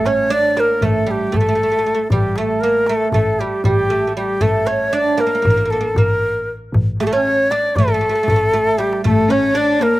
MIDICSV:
0, 0, Header, 1, 6, 480
1, 0, Start_track
1, 0, Tempo, 514139
1, 1965, Time_signature, 9, 3, 24, 8
1, 9333, End_track
2, 0, Start_track
2, 0, Title_t, "Ney"
2, 0, Program_c, 0, 77
2, 60, Note_on_c, 0, 73, 86
2, 302, Note_on_c, 0, 74, 94
2, 316, Note_off_c, 0, 73, 0
2, 558, Note_on_c, 0, 70, 81
2, 572, Note_off_c, 0, 74, 0
2, 790, Note_on_c, 0, 69, 83
2, 804, Note_off_c, 0, 70, 0
2, 1035, Note_on_c, 0, 67, 73
2, 1049, Note_off_c, 0, 69, 0
2, 1277, Note_on_c, 0, 69, 90
2, 1291, Note_off_c, 0, 67, 0
2, 1967, Note_off_c, 0, 69, 0
2, 1973, Note_on_c, 0, 67, 78
2, 2212, Note_on_c, 0, 69, 81
2, 2226, Note_off_c, 0, 67, 0
2, 2435, Note_on_c, 0, 70, 89
2, 2449, Note_off_c, 0, 69, 0
2, 2684, Note_on_c, 0, 69, 80
2, 2698, Note_off_c, 0, 70, 0
2, 2908, Note_off_c, 0, 69, 0
2, 2914, Note_on_c, 0, 69, 76
2, 3170, Note_on_c, 0, 67, 65
2, 3184, Note_off_c, 0, 69, 0
2, 3407, Note_off_c, 0, 67, 0
2, 3417, Note_on_c, 0, 67, 82
2, 3858, Note_off_c, 0, 67, 0
2, 3892, Note_on_c, 0, 67, 74
2, 4127, Note_on_c, 0, 69, 77
2, 4141, Note_off_c, 0, 67, 0
2, 4361, Note_on_c, 0, 73, 81
2, 4375, Note_off_c, 0, 69, 0
2, 4616, Note_on_c, 0, 74, 94
2, 4630, Note_off_c, 0, 73, 0
2, 4858, Note_on_c, 0, 70, 83
2, 4872, Note_off_c, 0, 74, 0
2, 5326, Note_on_c, 0, 69, 70
2, 5340, Note_off_c, 0, 70, 0
2, 5583, Note_on_c, 0, 70, 74
2, 5597, Note_off_c, 0, 69, 0
2, 6054, Note_off_c, 0, 70, 0
2, 6537, Note_on_c, 0, 69, 81
2, 6556, Note_on_c, 0, 67, 68
2, 6570, Note_off_c, 0, 69, 0
2, 6596, Note_on_c, 0, 69, 79
2, 6610, Note_off_c, 0, 67, 0
2, 6656, Note_on_c, 0, 73, 97
2, 6670, Note_off_c, 0, 69, 0
2, 7010, Note_on_c, 0, 74, 90
2, 7024, Note_off_c, 0, 73, 0
2, 7246, Note_on_c, 0, 69, 92
2, 7260, Note_off_c, 0, 74, 0
2, 8203, Note_on_c, 0, 67, 78
2, 8217, Note_off_c, 0, 69, 0
2, 8445, Note_off_c, 0, 67, 0
2, 8452, Note_on_c, 0, 69, 81
2, 8692, Note_on_c, 0, 73, 82
2, 8706, Note_off_c, 0, 69, 0
2, 8936, Note_on_c, 0, 74, 86
2, 8950, Note_off_c, 0, 73, 0
2, 9172, Note_on_c, 0, 70, 81
2, 9186, Note_off_c, 0, 74, 0
2, 9333, Note_off_c, 0, 70, 0
2, 9333, End_track
3, 0, Start_track
3, 0, Title_t, "Cello"
3, 0, Program_c, 1, 42
3, 8446, Note_on_c, 1, 57, 75
3, 8665, Note_on_c, 1, 61, 76
3, 8679, Note_off_c, 1, 57, 0
3, 8906, Note_on_c, 1, 62, 79
3, 8920, Note_off_c, 1, 61, 0
3, 9150, Note_on_c, 1, 58, 73
3, 9164, Note_off_c, 1, 62, 0
3, 9333, Note_off_c, 1, 58, 0
3, 9333, End_track
4, 0, Start_track
4, 0, Title_t, "Oud"
4, 0, Program_c, 2, 24
4, 57, Note_on_c, 2, 61, 73
4, 280, Note_off_c, 2, 61, 0
4, 283, Note_on_c, 2, 62, 87
4, 532, Note_off_c, 2, 62, 0
4, 533, Note_on_c, 2, 58, 68
4, 753, Note_off_c, 2, 58, 0
4, 768, Note_on_c, 2, 57, 73
4, 990, Note_off_c, 2, 57, 0
4, 994, Note_on_c, 2, 55, 59
4, 1231, Note_off_c, 2, 55, 0
4, 1234, Note_on_c, 2, 57, 68
4, 1302, Note_off_c, 2, 57, 0
4, 1313, Note_on_c, 2, 57, 49
4, 1376, Note_off_c, 2, 57, 0
4, 1388, Note_on_c, 2, 57, 50
4, 1439, Note_off_c, 2, 57, 0
4, 1450, Note_on_c, 2, 57, 41
4, 1513, Note_off_c, 2, 57, 0
4, 1524, Note_on_c, 2, 57, 49
4, 1592, Note_off_c, 2, 57, 0
4, 1603, Note_on_c, 2, 57, 41
4, 1658, Note_off_c, 2, 57, 0
4, 1669, Note_on_c, 2, 57, 45
4, 1729, Note_off_c, 2, 57, 0
4, 1740, Note_on_c, 2, 57, 47
4, 1805, Note_off_c, 2, 57, 0
4, 1816, Note_on_c, 2, 57, 51
4, 1884, Note_off_c, 2, 57, 0
4, 1977, Note_on_c, 2, 55, 73
4, 2216, Note_off_c, 2, 55, 0
4, 2220, Note_on_c, 2, 57, 65
4, 2456, Note_off_c, 2, 57, 0
4, 2459, Note_on_c, 2, 58, 68
4, 2698, Note_off_c, 2, 58, 0
4, 2702, Note_on_c, 2, 57, 67
4, 2917, Note_off_c, 2, 57, 0
4, 2934, Note_on_c, 2, 57, 68
4, 3176, Note_off_c, 2, 57, 0
4, 3180, Note_on_c, 2, 55, 63
4, 3398, Note_off_c, 2, 55, 0
4, 3409, Note_on_c, 2, 55, 68
4, 3638, Note_off_c, 2, 55, 0
4, 3642, Note_on_c, 2, 57, 62
4, 3793, Note_off_c, 2, 57, 0
4, 3804, Note_on_c, 2, 57, 44
4, 3874, Note_off_c, 2, 57, 0
4, 3891, Note_on_c, 2, 55, 65
4, 4112, Note_off_c, 2, 55, 0
4, 4116, Note_on_c, 2, 57, 74
4, 4356, Note_on_c, 2, 61, 70
4, 4368, Note_off_c, 2, 57, 0
4, 4596, Note_off_c, 2, 61, 0
4, 4600, Note_on_c, 2, 62, 82
4, 4826, Note_off_c, 2, 62, 0
4, 4832, Note_on_c, 2, 58, 73
4, 4906, Note_off_c, 2, 58, 0
4, 4917, Note_on_c, 2, 58, 49
4, 4982, Note_off_c, 2, 58, 0
4, 4993, Note_on_c, 2, 58, 49
4, 5050, Note_off_c, 2, 58, 0
4, 5061, Note_on_c, 2, 58, 44
4, 5127, Note_off_c, 2, 58, 0
4, 5138, Note_on_c, 2, 58, 51
4, 5192, Note_off_c, 2, 58, 0
4, 5203, Note_on_c, 2, 58, 45
4, 5268, Note_off_c, 2, 58, 0
4, 5279, Note_on_c, 2, 58, 49
4, 5332, Note_off_c, 2, 58, 0
4, 5343, Note_on_c, 2, 58, 42
4, 5410, Note_off_c, 2, 58, 0
4, 5421, Note_on_c, 2, 58, 54
4, 5486, Note_off_c, 2, 58, 0
4, 5580, Note_on_c, 2, 58, 61
4, 6020, Note_off_c, 2, 58, 0
4, 6537, Note_on_c, 2, 57, 70
4, 6588, Note_off_c, 2, 57, 0
4, 6599, Note_on_c, 2, 57, 70
4, 6653, Note_on_c, 2, 61, 76
4, 6654, Note_off_c, 2, 57, 0
4, 7014, Note_off_c, 2, 61, 0
4, 7018, Note_on_c, 2, 62, 78
4, 7259, Note_off_c, 2, 62, 0
4, 7268, Note_on_c, 2, 57, 72
4, 7329, Note_off_c, 2, 57, 0
4, 7354, Note_on_c, 2, 57, 50
4, 7403, Note_off_c, 2, 57, 0
4, 7414, Note_on_c, 2, 57, 52
4, 7466, Note_off_c, 2, 57, 0
4, 7477, Note_on_c, 2, 57, 42
4, 7539, Note_off_c, 2, 57, 0
4, 7557, Note_on_c, 2, 57, 48
4, 7601, Note_off_c, 2, 57, 0
4, 7612, Note_on_c, 2, 57, 44
4, 7673, Note_off_c, 2, 57, 0
4, 7684, Note_on_c, 2, 57, 51
4, 7735, Note_off_c, 2, 57, 0
4, 7746, Note_on_c, 2, 57, 52
4, 7794, Note_off_c, 2, 57, 0
4, 7805, Note_on_c, 2, 57, 53
4, 7879, Note_off_c, 2, 57, 0
4, 7968, Note_on_c, 2, 57, 68
4, 8197, Note_off_c, 2, 57, 0
4, 8201, Note_on_c, 2, 55, 67
4, 8439, Note_off_c, 2, 55, 0
4, 8442, Note_on_c, 2, 57, 77
4, 8683, Note_on_c, 2, 61, 71
4, 8692, Note_off_c, 2, 57, 0
4, 8911, Note_off_c, 2, 61, 0
4, 8915, Note_on_c, 2, 62, 80
4, 9159, Note_on_c, 2, 58, 68
4, 9169, Note_off_c, 2, 62, 0
4, 9333, Note_off_c, 2, 58, 0
4, 9333, End_track
5, 0, Start_track
5, 0, Title_t, "Double bass"
5, 0, Program_c, 3, 43
5, 0, Note_on_c, 3, 33, 86
5, 659, Note_off_c, 3, 33, 0
5, 759, Note_on_c, 3, 33, 81
5, 1189, Note_off_c, 3, 33, 0
5, 1240, Note_on_c, 3, 33, 79
5, 1883, Note_off_c, 3, 33, 0
5, 1962, Note_on_c, 3, 33, 97
5, 2818, Note_off_c, 3, 33, 0
5, 2913, Note_on_c, 3, 33, 82
5, 3132, Note_off_c, 3, 33, 0
5, 3398, Note_on_c, 3, 33, 88
5, 4042, Note_off_c, 3, 33, 0
5, 4117, Note_on_c, 3, 33, 81
5, 4976, Note_off_c, 3, 33, 0
5, 5084, Note_on_c, 3, 33, 89
5, 5512, Note_off_c, 3, 33, 0
5, 5555, Note_on_c, 3, 33, 77
5, 6202, Note_off_c, 3, 33, 0
5, 6281, Note_on_c, 3, 33, 91
5, 7139, Note_off_c, 3, 33, 0
5, 7244, Note_on_c, 3, 33, 87
5, 7459, Note_off_c, 3, 33, 0
5, 7725, Note_on_c, 3, 33, 83
5, 8368, Note_off_c, 3, 33, 0
5, 8446, Note_on_c, 3, 33, 89
5, 9302, Note_off_c, 3, 33, 0
5, 9333, End_track
6, 0, Start_track
6, 0, Title_t, "Darbuka"
6, 52, Note_on_c, 9, 63, 75
6, 145, Note_off_c, 9, 63, 0
6, 529, Note_on_c, 9, 63, 73
6, 622, Note_off_c, 9, 63, 0
6, 769, Note_on_c, 9, 64, 74
6, 862, Note_off_c, 9, 64, 0
6, 1251, Note_on_c, 9, 64, 84
6, 1344, Note_off_c, 9, 64, 0
6, 1486, Note_on_c, 9, 62, 22
6, 1579, Note_off_c, 9, 62, 0
6, 1962, Note_on_c, 9, 64, 72
6, 2056, Note_off_c, 9, 64, 0
6, 2200, Note_on_c, 9, 63, 66
6, 2293, Note_off_c, 9, 63, 0
6, 2674, Note_on_c, 9, 63, 70
6, 2767, Note_off_c, 9, 63, 0
6, 2916, Note_on_c, 9, 64, 77
6, 3009, Note_off_c, 9, 64, 0
6, 3398, Note_on_c, 9, 64, 81
6, 3491, Note_off_c, 9, 64, 0
6, 4113, Note_on_c, 9, 64, 75
6, 4206, Note_off_c, 9, 64, 0
6, 4359, Note_on_c, 9, 63, 68
6, 4452, Note_off_c, 9, 63, 0
6, 4846, Note_on_c, 9, 63, 70
6, 4939, Note_off_c, 9, 63, 0
6, 5091, Note_on_c, 9, 64, 84
6, 5184, Note_off_c, 9, 64, 0
6, 5567, Note_on_c, 9, 64, 99
6, 5660, Note_off_c, 9, 64, 0
6, 5806, Note_on_c, 9, 62, 23
6, 5899, Note_off_c, 9, 62, 0
6, 6296, Note_on_c, 9, 64, 86
6, 6389, Note_off_c, 9, 64, 0
6, 6538, Note_on_c, 9, 63, 71
6, 6631, Note_off_c, 9, 63, 0
6, 6771, Note_on_c, 9, 62, 26
6, 6865, Note_off_c, 9, 62, 0
6, 7012, Note_on_c, 9, 63, 66
6, 7105, Note_off_c, 9, 63, 0
6, 7247, Note_on_c, 9, 64, 88
6, 7341, Note_off_c, 9, 64, 0
6, 7731, Note_on_c, 9, 64, 91
6, 7824, Note_off_c, 9, 64, 0
6, 7975, Note_on_c, 9, 63, 50
6, 8069, Note_off_c, 9, 63, 0
6, 8096, Note_on_c, 9, 62, 59
6, 8189, Note_off_c, 9, 62, 0
6, 8218, Note_on_c, 9, 63, 70
6, 8311, Note_off_c, 9, 63, 0
6, 8335, Note_on_c, 9, 62, 79
6, 8428, Note_off_c, 9, 62, 0
6, 8450, Note_on_c, 9, 64, 83
6, 8543, Note_off_c, 9, 64, 0
6, 8692, Note_on_c, 9, 63, 67
6, 8785, Note_off_c, 9, 63, 0
6, 9172, Note_on_c, 9, 63, 73
6, 9266, Note_off_c, 9, 63, 0
6, 9333, End_track
0, 0, End_of_file